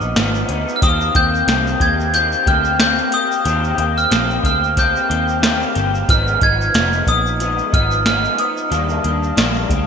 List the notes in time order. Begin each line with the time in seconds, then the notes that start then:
Already playing: F3 B3 D#4 F6
0.01 A#1, shaker
0.16 G#1 G#2 F3 B3 D#4, snare, closed hi-hat, shaker
0.35 shaker
0.48 D2 F3 B3 D#4, closed hi-hat, shaker
0.69 shaker
0.76 F6
0.81 D#2 D#3 A#3 C4 G4 D#6, kick, closed hi-hat, shaker
1.01 shaker
1.14 D#2 A#3 C4 G4 G6, kick, closed hi-hat
1.35 shaker
1.47 C2 D#3 A#3 C4 G4, snare, closed hi-hat, shaker
1.67 shaker
1.80 D#2 A#3 C4 G4 G#6, kick, closed hi-hat, shaker
2.00 shaker
2.13 D#3 A#3 C4 G4 G6, closed hi-hat, shaker
2.32 shaker
2.46 D2 A#3 C4 G4 F6, kick, closed hi-hat
2.65 shaker
2.80 A#3 C4 G4 G6, snare, closed hi-hat, shaker
2.98 shaker
3.12 A#3 C4 G4 D#6, closed hi-hat, shaker
3.32 shaker
3.45 D#2 D#3 A#3 C4 G4, closed hi-hat, shaker
3.64 shaker
3.78 D#2 A#3 C4 G4, closed hi-hat
3.98 F6, shaker
4.10 A#1 D#3 A#3 C4 G4, snare, closed hi-hat, shaker
4.30 shaker
4.43 D2 A#3 C4 G4 F6, kick, closed hi-hat, shaker
4.64 shaker
4.77 A#3 C4 G4 G6, kick, closed hi-hat, shaker
4.96 shaker
5.09 D#2 A#3 C4 G4, closed hi-hat
5.28 shaker
5.42 D#3 A#3 C4 G4, snare, closed hi-hat, shaker
5.62 shaker
5.75 G1 A#3 C4 G4, closed hi-hat, shaker
5.95 shaker
6.08 G#1 G#2 F3 B3 D#4 F6, kick, closed hi-hat, shaker
6.27 shaker
6.41 G#1 F3 B3 D#4 G#6, kick, closed hi-hat
6.61 shaker
6.74 F1 G#2 F3 B3 D#4, snare, closed hi-hat, shaker
6.93 shaker
7.07 A#1 F3 B3 D#4 D#6, kick, closed hi-hat, shaker
7.27 shaker
7.39 G#2 F3 B3 D#4, closed hi-hat, shaker
7.59 shaker
7.72 G#1 F3 B3 D#4 F6, kick, closed hi-hat
7.91 shaker
8.05 G#2 F3 B3 D#4 F6, snare, closed hi-hat, shaker
8.25 shaker
8.38 F3 B3 D#4 D#6, closed hi-hat, shaker
8.57 shaker
8.70 D#2 D#3 G3 A#3 D4, closed hi-hat, shaker
8.89 shaker
9.03 D#2 G3 A#3 D4, closed hi-hat
9.23 shaker
9.36 A#1 D#3 G3 A#3 D4, snare, closed hi-hat, shaker
9.56 shaker
9.70 D2 G3 A#3 D4, kick, closed hi-hat, shaker